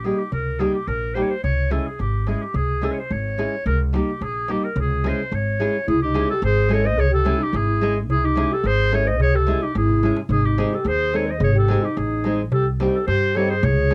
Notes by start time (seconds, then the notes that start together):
Already playing: A#1
0.04 G3 A#3 D#4 G4 G#4
0.19 G4, darbuka tek
0.32 C#2 A#4, darbuka dum
0.59 G3 A#3 D#4 G4 G#4, darbuka tek
0.74 G4, darbuka tek
0.87 A#1 A#4, darbuka tek
1.14 G3 A#3 D#4 G4 C5, darbuka tek
1.22 C#5
1.29 C5
1.44 C#2 C#5, darbuka dum
1.70 G#3 C#4 E4 G#4 A4, darbuka tek
1.86 G#4
1.99 G#1 G4, darbuka tek
2.27 G#3 C#4 E4 G#4, darbuka tek
2.41 G4, darbuka tek
2.54 C#2 G#4, darbuka dum
2.81 G#3 C#4 E4 G#4 A4, darbuka tek
2.92 C#5
2.98 C5
3.10 G#1 C#5, darbuka tek
3.38 G#3 C#4 E4 G#4, darbuka tek
3.53 darbuka tek
3.66 C#2 A#4, darbuka dum
3.93 G3 A#3 D#4 G4, darbuka tek
4.21 A#1 G#4, darbuka tek
4.48 G3 A#3 D#4 G4, darbuka tek
4.63 A#4, darbuka tek
4.76 C#2, darbuka dum
4.80 G#4
4.90 darbuka tek
5.04 G#3 C#4 E4 G#4 C5, darbuka tek
5.32 G#1 C#5, darbuka tek
5.60 G#3 C#4 E4 G#4, darbuka tek
5.74 darbuka tek
5.87 C#2 E4 G#4, darbuka dum
6.03 D#4 G4
6.14 G#3 C#4 E4 G#4, darbuka tek
6.29 G4 A4, darbuka tek
6.42 G#1 G#4 C5, darbuka tek
6.57 darbuka tek
6.69 G#3 C#4 E4 G#4 A4 C#5, darbuka tek
6.85 C5 D#5, darbuka tek
6.98 C#2 G#4 C#5, darbuka dum
7.11 G4 A4
7.25 G#3 C#4 E4 G#4, darbuka tek
7.38 D#4, darbuka tek
7.43 G4
7.53 G#1 E4 G#4, darbuka tek
7.69 darbuka tek
7.81 G#3 C#4 E4 G#4, darbuka tek
7.96 darbuka tek
8.09 C#2 E4 G#4, darbuka dum
8.24 D#4 G4
8.36 G#3 C#4 E4 G#4, darbuka tek
8.52 G4 A4, darbuka tek
8.64 G#1 G#4 C5, darbuka tek
8.92 G#3 C#4 E4 G#4 A4 C#5, darbuka tek
9.06 C5 D#5, darbuka tek
9.19 C#2 G#4 C#5, darbuka dum
9.34 G4 A4, darbuka tek
9.47 G#3 C#4 E4 G#4, darbuka tek
9.62 D#4 G4, darbuka tek
9.75 G#1 E4 G#4, darbuka tek
9.89 darbuka dum
10.03 G#3 C#4 E4 G#4, darbuka tek
10.17 darbuka tek
10.29 G#1 D#4 G#4, darbuka dum
10.45 D#4 G4
10.58 G#3 C4 D#4 G#4, darbuka tek
10.73 G4 A4, darbuka tek
10.84 D#2 G#4 C5, darbuka tek
11.00 darbuka tek
11.13 G#3 C4 D#4 G#4 A4 C#5, darbuka tek
11.26 C5, darbuka tek
11.31 D#5
11.39 G#1 G#4, darbuka dum
11.44 C#5
11.54 G4
11.58 A4
11.68 G#3 C4 D#4 G#4, darbuka tek
11.83 D#4 G4, darbuka tek
11.97 A1 D#4 G#4, darbuka tek
12.10 darbuka tek
12.24 G#3 C4 D#4 G#4, darbuka tek
12.38 darbuka tek
12.52 C2 G4 A4, darbuka dum
12.80 G3 C4 D#4 G4, darbuka tek
12.94 G4 A4, darbuka tek
13.07 G2 G4 C5, darbuka tek
13.22 darbuka tek
13.35 G3 C4 D#4 G4 A4 C#5, darbuka tek
13.49 G#4 C5, darbuka tek
13.63 C#2 G#4 C#5, darbuka dum
13.91 G#3, darbuka tek